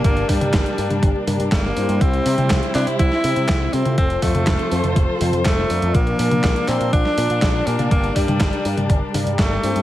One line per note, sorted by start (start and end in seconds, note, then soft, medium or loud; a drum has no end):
0.00 1.97 A#3 medium
0.00 0.26 D4 medium
0.00 1.97 D4 medium
0.00 0.26 G4 medium
0.00 0.26 A#4 medium
0.00 0.26 D5 loud
0.04 0.22 G1 loud
0.04 3.94 G3 medium
0.04 0.30 A#3 loud
0.04 kick loud
0.04 closed hi-hat medium
0.17 closed hi-hat soft
0.29 0.38 G2 medium
0.29 1.27 G3 loud
0.29 0.39 D4 loud
0.29 0.39 G4 medium
0.29 0.39 A#4 medium
0.29 0.39 D5 loud
0.29 kick medium
0.29 open hi-hat loud
0.41 0.50 G2 medium
0.41 0.75 D4 medium
0.41 0.75 G4 medium
0.41 0.75 A#4 medium
0.41 0.75 D5 medium
0.41 closed hi-hat medium
0.41 high tom medium
0.54 0.63 G1 loud
0.54 kick loud
0.54 snare loud
0.54 clap medium
0.54 closed hi-hat medium
0.66 closed hi-hat soft
0.78 0.87 G2 loud
0.78 1.24 D4 medium
0.78 1.24 G4 medium
0.78 1.24 A#4 medium
0.78 1.24 D5 loud
0.78 open hi-hat medium
0.90 0.99 G2 medium
0.90 closed hi-hat medium
0.90 high tom medium
1.03 1.12 G1 loud
1.03 kick loud
1.03 closed hi-hat medium
1.27 1.36 G2 loud
1.27 1.74 D4 medium
1.27 1.74 G4 medium
1.27 1.74 A#4 medium
1.27 1.74 D5 loud
1.27 open hi-hat loud
1.27 high tom medium
1.40 1.49 G2 loud
1.40 closed hi-hat medium
1.52 1.70 G1 medium
1.52 2.02 A#3 loud
1.52 kick loud
1.52 snare loud
1.52 clap loud
1.52 closed hi-hat medium
1.64 snare soft
1.76 1.86 G2 medium
1.76 2.23 C4 medium
1.76 2.23 E4 medium
1.76 2.23 G4 medium
1.76 2.23 C5 loud
1.76 open hi-hat medium
1.89 1.98 G2 medium
1.89 closed hi-hat medium
2.01 2.19 C2 loud
2.01 2.74 C4 loud
2.01 3.96 C4 medium
2.01 3.96 E4 medium
2.01 kick loud
2.01 closed hi-hat medium
2.13 closed hi-hat soft
2.26 2.35 C3 loud
2.26 2.36 C4 loud
2.26 2.36 E4 medium
2.26 2.36 G4 medium
2.26 2.36 C5 loud
2.26 open hi-hat loud
2.38 2.47 C3 medium
2.38 2.72 C4 medium
2.38 2.72 E4 medium
2.38 2.72 G4 medium
2.38 2.72 C5 medium
2.38 closed hi-hat medium
2.38 high tom medium
2.50 2.59 C2 loud
2.50 kick loud
2.50 snare loud
2.50 clap medium
2.50 closed hi-hat medium
2.63 closed hi-hat soft
2.75 2.84 C3 loud
2.75 3.21 C4 medium
2.75 2.86 D4 loud
2.75 3.21 E4 medium
2.75 3.21 G4 medium
2.75 3.21 C5 loud
2.75 clap medium
2.75 open hi-hat medium
2.87 2.96 C3 medium
2.87 closed hi-hat medium
2.99 3.08 C2 loud
2.99 3.75 E4 loud
2.99 kick loud
2.99 closed hi-hat medium
3.12 snare soft
3.24 3.33 C3 medium
3.24 3.70 C4 medium
3.24 3.70 E4 medium
3.24 3.70 G4 medium
3.24 3.70 C5 loud
3.24 open hi-hat loud
3.36 3.45 C3 loud
3.36 closed hi-hat medium
3.49 3.67 C2 medium
3.49 kick loud
3.49 snare loud
3.49 clap medium
3.49 closed hi-hat medium
3.73 3.82 C3 medium
3.73 3.97 C4 loud
3.73 4.20 C4 medium
3.73 4.20 F4 medium
3.73 4.20 A4 medium
3.73 4.20 C5 loud
3.73 open hi-hat medium
3.85 3.95 C3 medium
3.85 closed hi-hat medium
3.85 high tom medium
3.98 4.16 F1 loud
3.98 7.87 F3 medium
3.98 4.24 C4 loud
3.98 5.93 F4 medium
3.98 5.93 A4 medium
3.98 5.93 C5 medium
3.98 kick loud
3.98 closed hi-hat medium
4.10 closed hi-hat soft
4.22 4.31 F2 medium
4.22 5.21 A3 loud
4.22 4.33 C4 medium
4.22 4.33 F4 medium
4.22 4.33 A4 medium
4.22 4.33 C5 loud
4.22 kick medium
4.22 open hi-hat loud
4.35 4.44 F2 medium
4.35 4.69 C4 medium
4.35 4.69 F4 medium
4.35 4.69 A4 medium
4.35 4.69 C5 medium
4.35 closed hi-hat medium
4.35 high tom medium
4.47 4.56 F1 loud
4.47 kick loud
4.47 snare loud
4.47 clap medium
4.47 closed hi-hat medium
4.59 closed hi-hat soft
4.72 4.81 F2 loud
4.72 5.18 C4 medium
4.72 5.18 F4 medium
4.72 5.18 A4 medium
4.72 5.18 C5 loud
4.72 open hi-hat medium
4.84 4.93 F2 medium
4.84 closed hi-hat medium
4.84 high tom medium
4.96 5.05 F1 loud
4.96 kick loud
4.96 closed hi-hat medium
5.21 5.30 F2 medium
5.21 5.67 C4 medium
5.21 5.67 F4 medium
5.21 5.67 A4 medium
5.21 5.67 C5 loud
5.21 open hi-hat loud
5.21 high tom medium
5.33 5.42 F2 medium
5.33 closed hi-hat medium
5.45 5.63 F1 medium
5.45 5.96 A3 loud
5.45 kick loud
5.45 snare loud
5.45 clap medium
5.45 closed hi-hat medium
5.58 snare soft
5.70 5.79 F2 medium
5.70 6.16 D4 medium
5.70 6.16 F4 medium
5.70 6.16 A#4 medium
5.70 6.16 D5 loud
5.70 open hi-hat medium
5.82 5.91 F2 medium
5.82 closed hi-hat medium
5.95 6.13 A#1 loud
5.95 6.70 A#3 loud
5.95 9.82 D4 medium
5.95 kick loud
5.95 closed hi-hat medium
6.07 closed hi-hat soft
6.19 6.28 A#2 medium
6.19 6.30 D4 loud
6.19 6.30 F4 medium
6.19 6.30 A#4 medium
6.19 6.30 D5 loud
6.19 open hi-hat loud
6.31 6.40 A#2 medium
6.31 6.65 D4 medium
6.31 6.65 F4 medium
6.31 6.65 A#4 medium
6.31 6.65 D5 medium
6.31 closed hi-hat soft
6.31 high tom medium
6.44 6.53 A#1 loud
6.44 kick loud
6.44 snare loud
6.44 clap medium
6.44 closed hi-hat medium
6.56 closed hi-hat soft
6.68 6.77 A#2 loud
6.68 6.92 C4 loud
6.68 7.15 D4 medium
6.68 7.15 F4 medium
6.68 7.15 A#4 medium
6.68 7.15 D5 loud
6.68 clap medium
6.68 open hi-hat medium
6.81 6.90 A#2 medium
6.81 closed hi-hat soft
6.93 7.02 A#1 loud
6.93 7.68 D4 loud
6.93 kick loud
6.93 closed hi-hat medium
7.05 snare soft
7.18 7.27 A#2 medium
7.18 7.64 D4 medium
7.18 7.64 F4 medium
7.18 7.64 A#4 medium
7.18 7.64 D5 loud
7.18 open hi-hat loud
7.30 7.39 A#2 loud
7.30 closed hi-hat soft
7.42 7.60 A#1 medium
7.42 kick loud
7.42 snare loud
7.42 clap medium
7.42 closed hi-hat medium
7.67 7.76 A#2 medium
7.67 7.91 A#3 loud
7.67 8.13 D4 medium
7.67 8.13 G4 medium
7.67 8.13 A#4 medium
7.67 8.13 D5 loud
7.67 open hi-hat loud
7.79 7.88 A#2 medium
7.79 closed hi-hat medium
7.79 high tom medium
7.91 8.09 G1 loud
7.91 9.82 G3 medium
7.91 8.17 A#3 loud
7.91 kick loud
7.91 closed hi-hat medium
8.04 closed hi-hat soft
8.16 8.25 G2 medium
8.16 9.14 G3 loud
8.16 8.26 D4 medium
8.16 8.26 G4 medium
8.16 8.26 A#4 medium
8.16 8.26 D5 loud
8.16 kick medium
8.16 open hi-hat loud
8.28 8.37 G2 medium
8.28 8.62 D4 medium
8.28 8.62 G4 medium
8.28 8.62 A#4 medium
8.28 8.62 D5 medium
8.28 closed hi-hat medium
8.28 high tom medium
8.40 8.49 G1 loud
8.40 kick loud
8.40 snare loud
8.40 clap medium
8.40 closed hi-hat medium
8.53 closed hi-hat soft
8.65 8.74 G2 loud
8.65 9.11 D4 medium
8.65 9.11 G4 medium
8.65 9.11 A#4 medium
8.65 9.11 D5 loud
8.65 open hi-hat loud
8.77 8.86 G2 medium
8.77 closed hi-hat medium
8.77 high tom medium
8.90 8.99 G1 loud
8.90 kick loud
8.90 closed hi-hat medium
9.14 9.23 G2 loud
9.14 9.61 D4 medium
9.14 9.61 G4 medium
9.14 9.61 A#4 medium
9.14 9.61 D5 loud
9.14 open hi-hat loud
9.14 high tom medium
9.26 9.36 G2 loud
9.26 closed hi-hat medium
9.39 9.57 G1 medium
9.39 9.82 A3 loud
9.39 kick loud
9.39 snare loud
9.39 clap medium
9.39 closed hi-hat medium
9.51 snare soft
9.63 9.72 G2 medium
9.63 9.82 C4 medium
9.63 9.82 E4 medium
9.63 9.82 G4 medium
9.63 9.82 C5 loud
9.63 open hi-hat loud
9.76 9.82 G2 medium
9.76 closed hi-hat medium